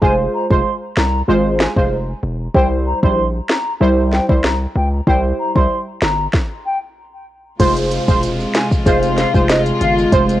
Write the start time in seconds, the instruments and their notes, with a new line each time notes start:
0.01 808-style bass F1, synth stab G#3 F4 C5, flute G#5, kick
0.34 flute A#5
0.50 808-style bass F1, synth stab G#3 F4 C5, flute C6, kick
0.97 808-style bass C2, flute A#5, snare
1.28 808-style bass G#1, synth stab G#3 F4 C5
1.60 flute G#5, snare
1.76 808-style bass F1, synth stab G#3 F4 C5, kick
2.23 808-style bass E1
2.54 808-style bass C2, synth stab G3 E4 C5, flute G5, kick
2.86 flute A#5
3.03 808-style bass A#1, synth stab G3 E4 C5, flute C6, kick
3.49 flute A#5, snare
3.80 808-style bass C2, synth stab G3 E4 C5
4.12 flute G5, snare
4.29 808-style bass C2, synth stab G3 E4 C5, kick
4.44 flute A#5, snare
4.76 808-style bass C#2, flute G5
5.07 808-style bass C2, synth stab G3 E4 C5, flute G5, kick
5.39 flute A#5
5.55 808-style bass C2, synth stab G3 E4 C5, flute C6, kick
6.02 808-style bass G1, flute A#5, snare
6.34 kick, snare
6.65 flute G5
7.59 808-style bass F1, string section C3 G#3 F4, synth stab G#3 F4 C5, flute C6, kick, closed hi-hat, downlifter, shaker
7.77 closed hi-hat, shaker
7.91 closed hi-hat, shaker
8.08 808-style bass E1, synth stab G#3 F4 C5, flute C6, kick, shaker
8.23 closed hi-hat, shaker
8.40 shaker
8.55 flute G#5, snare, closed hi-hat, shaker
8.71 kick, shaker
8.86 808-style bass F1, synth stab G#3 F4 C5, flute F5, kick, closed hi-hat, shaker
9.03 closed hi-hat, shaker
9.18 flute F5, snare, closed hi-hat, shaker
9.34 808-style bass F1, synth stab G#3 F4 C5, kick, shaker
9.49 flute D#5, snare, closed hi-hat, shaker
9.66 closed hi-hat, shaker
9.81 808-style bass G1, flute F5, closed hi-hat, shaker
9.98 shaker
10.12 808-style bass F1, synth stab G#3 F4 C5, flute C6, kick, closed hi-hat, shaker
10.29 closed hi-hat, shaker